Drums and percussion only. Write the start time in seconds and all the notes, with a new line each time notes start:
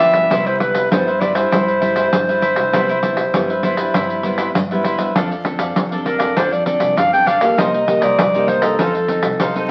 0.00 pandeiro
0.14 pandeiro
0.31 pandeiro
0.47 pandeiro
0.60 pandeiro
0.75 pandeiro
0.92 pandeiro
1.08 pandeiro
1.21 pandeiro
1.35 pandeiro
1.52 pandeiro
1.68 pandeiro
1.82 pandeiro
1.96 pandeiro
2.13 pandeiro
2.29 pandeiro
2.42 pandeiro
2.56 pandeiro
2.73 pandeiro
2.89 pandeiro
3.03 pandeiro
3.17 pandeiro
3.34 pandeiro
3.50 pandeiro
3.63 pandeiro
3.77 pandeiro
3.94 pandeiro
4.10 pandeiro
4.23 pandeiro
4.38 pandeiro
4.55 pandeiro
4.71 pandeiro
4.84 pandeiro
4.99 pandeiro
5.16 pandeiro
5.31 pandeiro
5.45 pandeiro
5.59 pandeiro
5.76 pandeiro
5.92 pandeiro
6.06 pandeiro
6.20 pandeiro
6.37 pandeiro
6.53 pandeiro
6.66 pandeiro
6.80 pandeiro
6.97 pandeiro
7.13 pandeiro
7.27 pandeiro
7.41 pandeiro
7.58 pandeiro
7.74 pandeiro
7.88 pandeiro
8.02 pandeiro
8.19 pandeiro
8.34 pandeiro
8.48 pandeiro
8.62 pandeiro
8.79 pandeiro
8.95 pandeiro
9.08 pandeiro
9.23 pandeiro
9.40 pandeiro
9.56 pandeiro